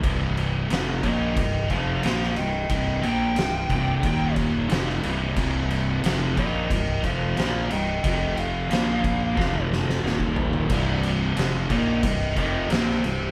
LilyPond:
<<
  \new Staff \with { instrumentName = "Lead electric guitar" } { \time 4/4 \key c \minor \tempo 4 = 90 r4. <bes' ees''>8 <bes' ees''>8 <c'' f''>8 <c'' f''>8 <ees'' g''>8 | <ees'' g''>8 g''2 r4. | r4. <bes' ees''>8 <bes' ees''>8 <c'' f''>8 <c'' f''>8 <ees'' g''>8 | <ees'' g''>8 f''2 r4. |
r4. <bes' ees''>8 <bes' ees''>8 <bes' ees''>8 <g' c''>8 <g' c''>8 | }
  \new Staff \with { instrumentName = "Distorted electric guitar" } { \clef bass \time 4/4 \key c \minor <c, g, c>4 <f, c f>8 <bes, f bes>8 <c, g,>8 <f, c f>8 <bes, f bes>8 <c, g,>8 | <c, g, c>8 <bes, f bes>8 <c, g,>8 <c, g, c>8 <ees, bes, ees>4 <f, c f>8 <c, g, c>8 | <c, g, c>4 <f, c f>8 <bes, f bes>8 <c, g,>8 <f, c f>8 <bes, f bes>8 <c, g,>8 | <f, c f>4 <bes, f bes>4 <f, c f>4 <ees, bes, ees>4 |
<c, g, c>4 <f, c f>8 <bes, f bes>8 <c, g,>8 <f, c f>8 <bes, f bes>8 <c, g,>8 | }
  \new Staff \with { instrumentName = "Fingered electric bass" } { \clef bass \time 4/4 \key c \minor c,,4 f,,8 bes,,8 c,,8 f,,8 bes,,8 c,,8 | c,,8 bes,,8 c,,8 c,,8 ees,,4 f,,8 c,,8 | c,,4 f,,8 bes,,8 c,,8 f,,8 bes,,8 c,,8 | f,,4 bes,,4 f,,4 ees,,4 |
c,,4 f,,8 bes,,8 c,,8 f,,8 bes,,8 c,,8 | }
  \new DrumStaff \with { instrumentName = "Drums" } \drummode { \time 4/4 <cymc bd>8 cymc8 <cymc sn>8 <cymc bd>8 <cymc bd>8 <cymc bd>8 <cymc sn>16 sn16 cymc8 | <cymc bd>8 cymc8 <cymc sn>8 <cymc bd>8 <cymc bd>8 <cymc bd>8 <cymc sn>16 sn16 cymc8 | <cymc bd>8 cymc8 <cymc sn>8 <cymc bd>8 <cymc bd>8 <cymc bd>8 <cymc sn>8 cymc8 | <cymc bd>8 cymc8 <cymc sn>8 <cymc bd>8 <bd sn>16 tommh16 sn16 sn16 sn16 bd16 tomfh16 tomfh16 |
<cymc bd>8 cymc8 <cymc sn>8 <cymc bd>8 <cymc bd>8 <cymc bd>8 <cymc sn>16 sn16 cymc8 | }
>>